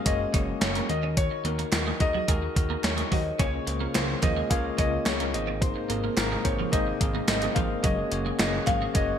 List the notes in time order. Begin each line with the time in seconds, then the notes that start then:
Already playing: G#3 A#3 C#4 F#4 A#4 C5
0.05 F#1 G#3 A#3 C#4 F#4 C#5 D#5, kick, closed hi-hat
0.33 F#1 G#3 A#3 C#4 F#4 G#4, kick, closed hi-hat
0.61 F#1 G#3 A#3 C#4 F#4 G#4 C#5, snare, clap, closed hi-hat, tambourine
0.75 A#3, closed hi-hat
0.89 D#2 D#3 D#4 F#4 A#4 D#5, muted clean electric guitar stroke, closed hi-hat
1.03 C#4
1.17 C#5, kick, closed hi-hat
1.31 muted clean electric guitar stroke
1.44 D#2 A#3 D#4 F#4 A#4, closed hi-hat
1.59 A#3, closed hi-hat
1.72 D#2 D#4 F#4 A#4, snare, clap, closed hi-hat, tambourine
1.87 G#3
2.00 D#2 D#4 F#4 G#4 D#5, muted clean electric guitar stroke, kick, closed hi-hat
2.14 F#3
2.28 D#2 G#3 D#4 F#4 A#4, kick, closed hi-hat
2.42 muted clean electric guitar stroke
2.55 D#2 D#4 F#4 A#4, kick, closed hi-hat
2.70 A#3
2.83 D#2 D#4 F#4 C#5, snare, clap, closed hi-hat, tambourine
2.97 G#3, closed hi-hat
3.11 D#2 F#3 D#4 F#4 C5 D#5, kick, open hi-hat
3.39 C#2 C#3 G#3 A#3 C#4 F4 G#4 C#5, kick, closed hi-hat
3.67 C#2 A#3 C#4 F4 G#4 C5, muted clean electric guitar stroke, closed hi-hat
3.80 A#3
3.94 C#2 A#3 C#4 F4 G#4 C5 C#5, muted clean electric guitar stroke, snare, clap, closed hi-hat, tambourine
4.22 D#2 F3 A#3 C#4 F4 G#4 C5 D#5, kick, clap, closed hi-hat
4.36 G#3
4.50 C#2 A#3 C#4 F4 G#4 C#5 F5, kick, closed hi-hat
4.78 C#2 A#3 C#4 F4 G#4 C#5 D#5, kick, closed hi-hat
5.05 C#2 A#3 C#4 F4 G#4 C#5, snare, clap, closed hi-hat, tambourine
5.20 A#3, closed hi-hat
5.33 G#1 G#2 C3 G#3 A#3 C4 D#4 G#4 C5 D#5, muted clean electric guitar stroke, closed hi-hat
5.47 C4
5.61 C5, kick, closed hi-hat
5.76 muted clean electric guitar stroke
5.89 G#1 A#3 C4 D#4 G#4 A#4, closed hi-hat
6.04 A#3
6.17 G#1 A#3 C4 D#4 G#4 A#4 C5, snare, clap, closed hi-hat, tambourine
6.32 G#3
6.44 G#1 A#3 C4 D#4 G#4 C5 C#5, muted clean electric guitar stroke, kick, closed hi-hat
6.59 F3
6.72 G#1 G#3 A#3 C4 D#4 G#4 C5 D#5, kick, closed hi-hat
6.87 muted clean electric guitar stroke
7.00 G#1 A#3 C4 D#4 G#4 A#4, kick, closed hi-hat
7.15 A#3
7.28 G#1 A#3 C4 D#4 G#4 C5 D#5, muted clean electric guitar stroke, snare, clap, closed hi-hat, tambourine
7.42 G#3, closed hi-hat
7.55 G#1 F3 A#3 C4 D#4 G#4 C5 F5, kick, closed hi-hat
7.83 F#1 C#3 F#3 A#3 C#4 F#4 G#4 C#5 D#5, kick, closed hi-hat
8.11 F#1 A#3 C#4 F#4 G#4 C#5, muted clean electric guitar stroke, closed hi-hat
8.26 G#3
8.38 F#1 A#3 C#4 F#4 G#4 C#5 D#5, muted clean electric guitar stroke, snare, clap, closed hi-hat, tambourine
8.66 G#1 F#3 A#3 C#4 F#4 G#4 C5 F5, kick, clap, closed hi-hat
8.82 G#3
8.94 F#1 A#3 C#4 F#4 G#4 C#5 D#5, kick, closed hi-hat